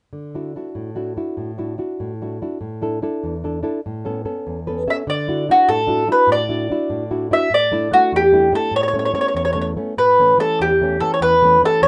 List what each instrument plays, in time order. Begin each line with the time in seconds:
0.13 nylon-string guitar D3
0.35 nylon-string guitar D4 E4 F#4
0.56 nylon-string guitar D4 E4 F#4
0.75 nylon-string guitar A2
0.95 nylon-string guitar D4 E4 F#4
1.16 nylon-string guitar D4 E4 F#4
1.37 nylon-string guitar A2
1.58 nylon-string guitar D4 E4 F#4
1.78 nylon-string guitar D4 E4 F#4
2.00 nylon-string guitar A2
2.22 nylon-string guitar D4 E4 F#4
2.42 nylon-string guitar D4 E4 F#4
2.61 nylon-string guitar A2
2.82 nylon-string guitar D4 E4 A4
3.02 nylon-string guitar D4 E4 A4
3.23 nylon-string guitar E2
3.44 nylon-string guitar D4 E4 A4
3.63 nylon-string guitar D4 E4 A4
3.86 nylon-string guitar A2
4.05 nylon-string guitar B3 C#4 A4
4.25 nylon-string guitar B3 C#4 A4
4.47 nylon-string guitar E2
4.67 nylon-string guitar B3 C#4 A4 B4
4.87 nylon-string guitar B3 C#4 A4 E5, mandolin E5
5.07 nylon-string guitar D3, mandolin D5
5.28 nylon-string guitar D4 E4 F#4
5.49 nylon-string guitar D4 E4 F#4, mandolin F#4
5.69 nylon-string guitar A2, mandolin A4
5.87 nylon-string guitar D4 E4 F#4
6.08 nylon-string guitar D4 E4 F#4
6.12 mandolin B4
6.27 nylon-string guitar A2
6.32 mandolin D5
6.49 nylon-string guitar D4 E4 F#4
6.70 nylon-string guitar D4 E4 F#4
6.90 nylon-string guitar A2
7.11 nylon-string guitar D4 E4 F#4
7.31 nylon-string guitar D4 E4 F#4, mandolin E5
7.50 nylon-string guitar A2
7.54 mandolin D5
7.72 nylon-string guitar A3 D4 E4
7.92 nylon-string guitar A3 D4 E4, mandolin F#4
8.12 nylon-string guitar E2, mandolin G4
8.32 nylon-string guitar A3 D4 E4
8.52 nylon-string guitar A3 D4 E4, mandolin A4
8.71 nylon-string guitar A2
8.76 mandolin C#5
8.83 mandolin C#5
8.88 mandolin C#5
8.93 nylon-string guitar A3 B3 C#4
8.99 mandolin C#5
9.05 mandolin C#5
9.14 nylon-string guitar A3 B3 C#4, mandolin C#5
9.21 mandolin C#5
9.28 mandolin C#5
9.35 nylon-string guitar E2, mandolin C#5
9.45 mandolin C#5
9.53 nylon-string guitar A3 B3 C#4, mandolin C#5
9.61 mandolin C#5
9.77 nylon-string guitar A3 B3 C#4
9.97 nylon-string guitar A2, mandolin B4
10.19 nylon-string guitar E3 A3 C#4
10.38 nylon-string guitar E3 A3 C#4, mandolin A4
10.60 nylon-string guitar E2, mandolin G4
10.81 nylon-string guitar E3 A3 C#4
11.00 nylon-string guitar E3 A3 C#4, mandolin A4
11.14 mandolin C#5
11.21 nylon-string guitar E2, mandolin B4
11.42 nylon-string guitar E3 A3 C#4
11.61 nylon-string guitar E3 A3 C#4
11.65 mandolin A4
11.82 nylon-string guitar E2, mandolin C#5